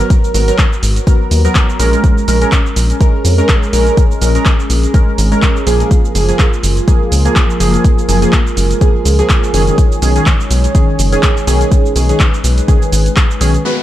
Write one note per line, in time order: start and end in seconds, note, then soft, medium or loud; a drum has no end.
0.00 0.32 F#3 medium
0.00 0.32 B3 medium
0.00 1.76 F#4 medium
0.00 0.32 A#4 medium
0.00 cabasa soft
0.10 kick loud
0.10 closed hi-hat medium
0.10 cabasa soft
0.24 cabasa soft
0.34 0.51 G#1 loud
0.34 0.45 F#3 medium
0.34 0.45 B3 medium
0.34 0.45 A#4 medium
0.34 open hi-hat loud
0.34 cabasa medium
0.48 0.64 F#3 medium
0.48 0.64 B3 medium
0.48 0.64 A#4 medium
0.48 closed hi-hat medium
0.48 cabasa soft
0.58 kick loud
0.58 clap loud
0.58 closed hi-hat medium
0.58 cabasa soft
0.73 cabasa soft
0.83 0.99 G#1 medium
0.83 open hi-hat loud
0.83 cabasa medium
0.96 closed hi-hat medium
0.96 cabasa soft
1.07 1.41 F#3 medium
1.07 1.41 B3 medium
1.07 1.41 A#4 medium
1.07 kick loud
1.07 closed hi-hat medium
1.07 cabasa soft
1.31 1.47 D#2 medium
1.31 open hi-hat loud
1.31 cabasa medium
1.45 1.77 F#3 medium
1.45 1.77 B3 medium
1.45 1.77 A#4 medium
1.45 closed hi-hat soft
1.45 cabasa soft
1.55 kick loud
1.55 clap loud
1.55 closed hi-hat medium
1.55 cabasa soft
1.69 cabasa soft
1.80 1.96 A#1 loud
1.80 2.25 G#3 medium
1.80 13.61 G#3 medium
1.80 5.87 C#4 medium
1.80 2.25 C#4 medium
1.80 3.71 A#4 medium
1.80 2.25 A#4 loud
1.80 open hi-hat loud
1.80 cabasa medium
1.93 closed hi-hat medium
1.93 cabasa soft
2.04 kick loud
2.04 closed hi-hat medium
2.04 cabasa soft
2.18 cabasa soft
2.28 2.44 A#1 loud
2.28 2.38 G#3 medium
2.28 2.38 C#4 medium
2.28 2.38 A#4 medium
2.28 open hi-hat loud
2.28 cabasa medium
2.41 2.57 G#3 medium
2.41 2.57 C#4 medium
2.41 2.57 A#4 medium
2.41 closed hi-hat medium
2.41 cabasa soft
2.52 kick loud
2.52 clap loud
2.52 closed hi-hat medium
2.52 cabasa soft
2.66 cabasa soft
2.76 2.93 A#1 medium
2.76 open hi-hat loud
2.76 cabasa medium
2.90 closed hi-hat soft
2.90 cabasa soft
3.00 3.35 G#3 medium
3.00 3.35 C#4 medium
3.00 3.35 A#4 medium
3.00 kick loud
3.00 closed hi-hat medium
3.00 cabasa soft
3.25 3.41 F2 medium
3.25 open hi-hat loud
3.25 cabasa medium
3.38 3.71 G#3 medium
3.38 3.71 C#4 medium
3.38 3.71 A#4 medium
3.38 closed hi-hat soft
3.38 cabasa soft
3.49 kick loud
3.49 clap loud
3.49 closed hi-hat medium
3.49 cabasa soft
3.63 cabasa soft
3.73 3.89 A#1 medium
3.73 4.19 G#3 medium
3.73 4.19 C#4 medium
3.73 5.89 G#4 medium
3.73 4.19 A#4 medium
3.73 open hi-hat loud
3.73 cabasa medium
3.87 closed hi-hat soft
3.87 cabasa soft
3.97 kick loud
3.97 closed hi-hat medium
3.97 cabasa soft
4.11 cabasa soft
4.22 4.38 A#1 loud
4.22 4.32 G#3 medium
4.22 4.32 C#4 medium
4.22 4.32 A#4 medium
4.22 open hi-hat loud
4.22 cabasa medium
4.35 4.51 G#3 medium
4.35 4.51 C#4 medium
4.35 4.51 A#4 medium
4.35 closed hi-hat medium
4.35 cabasa soft
4.45 kick loud
4.45 clap loud
4.45 closed hi-hat soft
4.45 cabasa soft
4.60 cabasa soft
4.70 4.86 A#1 medium
4.70 open hi-hat loud
4.70 cabasa medium
4.83 closed hi-hat soft
4.83 cabasa soft
4.94 5.29 G#3 medium
4.94 5.29 C#4 medium
4.94 5.29 A#4 medium
4.94 kick loud
4.94 closed hi-hat medium
4.94 cabasa soft
5.18 5.35 G#1 loud
5.18 open hi-hat loud
5.18 cabasa medium
5.32 5.64 G#3 medium
5.32 5.64 C#4 medium
5.32 5.64 A#4 medium
5.32 closed hi-hat soft
5.32 cabasa soft
5.42 kick loud
5.42 clap loud
5.42 closed hi-hat medium
5.42 cabasa soft
5.57 cabasa soft
5.67 5.83 A#1 loud
5.67 6.12 F3 medium
5.67 6.13 A#3 medium
5.67 6.13 G#4 medium
5.67 open hi-hat loud
5.67 cabasa medium
5.80 closed hi-hat soft
5.80 cabasa soft
5.91 9.74 F4 medium
5.91 9.74 A#4 medium
5.91 kick loud
5.91 closed hi-hat medium
5.91 cabasa soft
6.05 cabasa soft
6.15 6.31 F#1 loud
6.15 6.25 F3 medium
6.15 6.25 A#3 medium
6.15 6.25 G#4 medium
6.15 open hi-hat loud
6.15 cabasa medium
6.29 6.44 F3 medium
6.29 6.44 A#3 medium
6.29 6.44 G#4 medium
6.29 closed hi-hat medium
6.29 cabasa soft
6.39 kick loud
6.39 clap loud
6.39 closed hi-hat medium
6.39 cabasa soft
6.53 cabasa soft
6.63 6.80 F#1 medium
6.63 open hi-hat loud
6.63 cabasa medium
6.77 closed hi-hat soft
6.77 cabasa soft
6.88 7.22 F3 medium
6.88 7.22 A#3 medium
6.88 7.22 G#4 medium
6.88 kick loud
6.88 closed hi-hat medium
6.88 cabasa soft
7.12 7.28 C#2 medium
7.12 open hi-hat loud
7.12 cabasa medium
7.25 7.58 F3 medium
7.25 7.58 A#3 medium
7.25 7.58 G#4 medium
7.25 closed hi-hat soft
7.25 cabasa soft
7.36 kick loud
7.36 clap loud
7.36 closed hi-hat medium
7.36 cabasa soft
7.50 cabasa soft
7.60 7.77 F#1 loud
7.60 8.06 F3 medium
7.60 8.06 A#3 medium
7.60 8.06 G#4 medium
7.60 open hi-hat loud
7.60 cabasa medium
7.74 closed hi-hat soft
7.74 cabasa soft
7.84 kick loud
7.84 closed hi-hat medium
7.84 cabasa soft
7.99 cabasa soft
8.09 8.25 F#1 loud
8.09 8.19 F3 medium
8.09 8.19 A#3 medium
8.09 8.19 G#4 medium
8.09 open hi-hat loud
8.09 cabasa medium
8.22 8.38 F3 medium
8.22 8.38 A#3 medium
8.22 8.38 G#4 medium
8.22 closed hi-hat medium
8.22 cabasa soft
8.33 kick loud
8.33 clap loud
8.33 closed hi-hat medium
8.33 cabasa soft
8.47 cabasa soft
8.57 8.73 F#1 medium
8.57 open hi-hat medium
8.57 cabasa medium
8.71 closed hi-hat soft
8.71 cabasa soft
8.81 9.16 F3 medium
8.81 9.16 A#3 medium
8.81 9.16 G#4 medium
8.81 kick loud
8.81 closed hi-hat medium
8.81 cabasa soft
9.05 9.22 C#2 medium
9.05 open hi-hat loud
9.05 cabasa medium
9.19 9.51 F3 medium
9.19 9.51 A#3 medium
9.19 9.51 G#4 medium
9.19 closed hi-hat medium
9.19 cabasa soft
9.29 kick loud
9.29 clap loud
9.29 closed hi-hat medium
9.29 cabasa soft
9.44 cabasa soft
9.54 9.70 F#1 loud
9.54 10.00 D#3 medium
9.54 10.00 C#4 medium
9.54 10.00 G#4 loud
9.54 open hi-hat loud
9.54 cabasa medium
9.67 closed hi-hat medium
9.67 cabasa soft
9.78 13.61 D#4 medium
9.78 11.70 C#5 medium
9.78 kick loud
9.78 closed hi-hat medium
9.78 cabasa soft
9.92 cabasa soft
10.02 10.18 B1 loud
10.02 10.12 D#3 medium
10.02 10.12 C#4 medium
10.02 10.12 G#4 medium
10.02 open hi-hat loud
10.02 cabasa medium
10.16 10.31 D#3 medium
10.16 10.31 C#4 medium
10.16 10.31 G#4 medium
10.16 closed hi-hat medium
10.16 cabasa soft
10.26 kick loud
10.26 clap loud
10.26 closed hi-hat medium
10.26 cabasa soft
10.40 cabasa soft
10.51 10.67 B1 medium
10.51 open hi-hat loud
10.51 cabasa medium
10.64 closed hi-hat medium
10.64 cabasa soft
10.75 11.09 D#3 medium
10.75 11.09 C#4 medium
10.75 11.09 G#4 medium
10.75 kick loud
10.75 closed hi-hat medium
10.75 cabasa soft
10.99 11.15 F#1 medium
10.99 open hi-hat loud
10.99 cabasa medium
11.12 11.45 D#3 medium
11.12 11.45 C#4 medium
11.12 11.45 G#4 medium
11.12 closed hi-hat medium
11.12 cabasa soft
11.23 kick loud
11.23 clap loud
11.23 closed hi-hat medium
11.23 cabasa soft
11.37 cabasa soft
11.47 11.64 B1 loud
11.47 11.93 D#3 medium
11.47 11.93 C#4 medium
11.47 11.93 G#4 loud
11.47 open hi-hat loud
11.47 cabasa medium
11.61 closed hi-hat medium
11.61 cabasa soft
11.72 13.63 B4 medium
11.72 kick loud
11.72 closed hi-hat medium
11.72 cabasa soft
11.86 cabasa soft
11.96 12.12 B1 loud
11.96 12.06 D#3 medium
11.96 12.06 C#4 medium
11.96 12.06 G#4 medium
11.96 open hi-hat loud
11.96 cabasa medium
12.09 12.25 D#3 medium
12.09 12.25 C#4 medium
12.09 12.25 G#4 medium
12.09 closed hi-hat medium
12.09 cabasa soft
12.20 kick loud
12.20 clap loud
12.20 closed hi-hat medium
12.20 cabasa soft
12.34 cabasa soft
12.44 12.60 B1 medium
12.44 open hi-hat medium
12.44 cabasa medium
12.58 closed hi-hat medium
12.58 cabasa soft
12.68 13.03 D#3 medium
12.68 13.03 C#4 medium
12.68 13.03 G#4 medium
12.68 kick loud
12.68 closed hi-hat medium
12.68 cabasa soft
12.82 cabasa soft
12.93 13.09 G#1 loud
12.93 open hi-hat loud
12.93 cabasa medium
13.06 closed hi-hat medium
13.06 cabasa soft
13.16 kick loud
13.16 clap loud
13.16 closed hi-hat medium
13.16 cabasa soft
13.31 cabasa soft
13.41 13.57 B1 loud
13.41 13.52 D#3 medium
13.41 13.52 C#4 medium
13.41 13.53 G#4 loud
13.41 open hi-hat loud
13.41 cabasa medium
13.54 closed hi-hat medium
13.54 cabasa soft
13.65 13.83 G#3 medium
13.65 13.83 B3 medium
13.65 13.83 F#4 medium
13.65 13.83 B4 medium
13.65 13.83 A#5 medium
13.65 downlifter medium